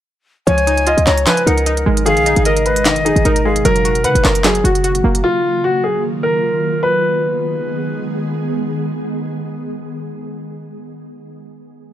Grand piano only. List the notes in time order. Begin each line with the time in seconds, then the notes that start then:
0.47 C#5
0.87 D#5
1.07 C#5
1.27 B4
1.47 A#4
2.06 G#4
2.46 A#4
2.66 B4
3.05 G#4
3.26 A#4
3.45 G#4
3.65 A#4
4.04 B4
4.25 A#4
4.44 G#4
4.64 F#4
5.24 F4
5.64 F#4
5.84 G#4
6.23 A#4
6.83 B4